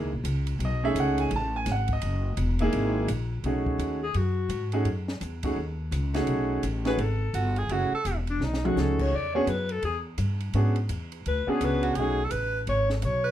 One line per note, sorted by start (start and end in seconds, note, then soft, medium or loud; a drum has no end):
0.01 0.12 C#2 medium
0.13 0.23 A#1 medium
0.24 0.58 C#2 loud
0.24 hi-hat pedal medium
0.24 ride medium
0.47 ride medium
0.59 0.94 B1 medium
0.59 ride medium
0.65 0.84 D#5 loud
0.84 1.29 A3 medium
0.84 1.29 C#4 medium
0.84 1.30 D#4 medium
0.84 1.30 G#4 medium
0.84 0.97 E5 loud
0.95 1.30 C#2 loud
0.95 hi-hat pedal medium
0.95 ride medium
1.00 1.20 F#5 loud
1.18 1.32 G#5 medium
1.18 ride medium
1.31 1.65 A1 medium
1.31 ride medium
1.36 1.55 A5 loud
1.56 1.68 G#5 loud
1.66 2.01 G#1 medium
1.66 snare soft
1.66 hi-hat pedal medium
1.66 ride medium
1.72 1.91 F#5 medium
1.88 kick medium
1.88 ride medium
1.93 2.36 D#5 medium
2.02 2.37 F#1 medium
2.02 ride medium
2.37 2.72 E1 medium
2.37 hi-hat pedal medium
2.37 ride medium
2.59 3.06 A#3 loud
2.59 3.07 D#4 medium
2.59 3.07 E4 medium
2.59 3.07 G#4 loud
2.59 ride medium
2.73 3.07 G#1 medium
2.73 ride medium
3.08 3.43 A#1 medium
3.08 hi-hat pedal medium
3.08 ride medium
3.43 3.78 B1 medium
3.43 3.98 A3 medium
3.43 3.98 C#4 medium
3.43 3.98 D#4 medium
3.43 3.98 F#4 medium
3.43 3.98 G#4 medium
3.43 ride medium
3.66 kick medium
3.78 4.13 D#2 medium
3.78 hi-hat pedal soft
3.78 ride medium
4.03 4.18 G#4 medium
4.14 4.48 F#2 medium
4.14 4.74 F#4 medium
4.14 ride medium
4.49 4.84 G#2 medium
4.49 hi-hat pedal medium
4.49 ride medium
4.72 4.85 A3 medium
4.72 4.85 C#4 medium
4.72 4.85 D#4 medium
4.72 4.85 F#4 medium
4.72 4.85 G#4 medium
4.72 ride medium
4.85 5.20 F#2 medium
4.85 ride medium
5.08 snare medium
5.21 5.56 E2 medium
5.21 hi-hat pedal medium
5.21 ride medium
5.43 5.56 A3 medium
5.43 5.56 C#4 medium
5.43 5.56 D#4 medium
5.43 5.56 F#4 medium
5.43 5.56 G#4 medium
5.43 kick medium
5.43 ride medium
5.56 5.91 D#2 medium
5.91 6.26 C#2 medium
5.91 hi-hat pedal medium
5.91 ride medium
6.14 6.60 A3 medium
6.14 6.61 C#4 medium
6.14 6.61 D#4 medium
6.14 6.61 F#4 medium
6.14 6.61 G#4 medium
6.14 snare medium
6.14 ride medium
6.26 6.62 B1 medium
6.26 ride medium
6.63 6.97 A1 medium
6.63 hi-hat pedal medium
6.63 ride medium
6.85 6.97 A3 medium
6.85 6.97 C#4 medium
6.85 6.98 D#4 medium
6.85 6.98 F#4 medium
6.85 6.98 G#4 medium
6.85 7.02 B4 loud
6.85 snare medium
6.85 ride soft
6.97 7.33 G#1 medium
6.97 7.58 A4 medium
6.97 ride medium
7.34 7.68 G1 medium
7.34 7.60 F#4 medium
7.34 hi-hat pedal medium
7.34 ride medium
7.56 7.73 G#4 medium
7.56 ride soft
7.69 7.90 F#1 medium
7.69 7.90 A3 medium
7.69 7.91 C#4 medium
7.69 7.91 E4 medium
7.69 7.91 F#4 medium
7.69 7.93 F#4 medium
7.69 7.91 G#4 medium
7.69 ride medium
7.92 8.16 A4 medium
7.92 muted upright bass stroke soft
8.05 8.39 E1 medium
8.05 hi-hat pedal medium
8.05 ride medium
8.27 8.45 D4 medium
8.27 ride soft
8.40 8.75 B1 medium
8.40 8.67 D#4 medium
8.40 snare soft
8.54 snare medium
8.64 9.10 A3 medium
8.64 9.10 C#4 medium
8.64 9.10 D#4 medium
8.64 9.10 F#4 medium
8.64 8.81 F#4 medium
8.64 9.10 G#4 medium
8.64 mid tom medium
8.76 9.11 C#2 medium
8.76 9.03 A4 medium
8.76 snare medium
8.76 hi-hat pedal medium
8.99 9.17 C#5 medium
8.99 kick medium
8.99 crash medium
9.12 9.46 E2 medium
9.12 9.34 D5 medium
9.35 9.47 B3 medium
9.35 9.47 C#4 medium
9.35 9.47 D4 medium
9.35 9.47 F#4 medium
9.35 9.47 G#4 medium
9.35 9.51 C#5 loud
9.47 9.82 F#2 medium
9.47 9.73 B4 medium
9.47 hi-hat pedal soft
9.47 ride medium
9.69 9.84 A4 medium
9.69 ride soft
9.83 10.17 E2 medium
9.83 9.98 G#4 medium
9.83 ride medium
10.18 10.53 G2 medium
10.18 hi-hat pedal medium
10.18 ride medium
10.40 ride medium
10.54 10.88 G#2 medium
10.54 10.75 B3 medium
10.54 10.74 C#4 medium
10.54 10.75 D4 medium
10.54 10.75 F#4 medium
10.54 10.75 G#4 medium
10.54 ride medium
10.76 ride soft
10.89 11.24 E2 medium
10.89 hi-hat pedal medium
10.89 ride medium
11.12 ride soft
11.26 11.46 D2 medium
11.26 11.51 B4 medium
11.26 ride medium
11.47 11.93 B3 medium
11.47 11.94 C#4 medium
11.47 11.94 D4 medium
11.47 11.94 F#4 medium
11.47 11.94 G#4 medium
11.47 11.66 G#4 medium
11.47 muted upright bass stroke soft
11.61 11.95 C#2 medium
11.61 11.85 B4 medium
11.61 hi-hat pedal medium
11.61 ride medium
11.83 11.97 F#4 medium
11.83 ride medium
11.95 12.31 B1 medium
11.95 12.18 A3 medium
11.95 12.18 C#4 medium
11.95 12.26 G#4 medium
11.95 ride medium
12.00 12.18 D#4 medium
12.00 12.18 F#4 medium
12.00 12.18 G#4 medium
12.24 12.33 A4 loud
12.31 12.66 A1 medium
12.31 12.60 B4 loud
12.31 hi-hat pedal medium
12.31 ride medium
12.67 13.02 G#1 medium
12.67 12.89 C#5 loud
12.67 ride medium
12.90 13.06 A4 medium
12.90 snare medium
13.02 13.31 B1 medium
13.02 13.26 C#5 medium
13.02 hi-hat pedal medium
13.02 ride medium
13.24 13.31 B4 loud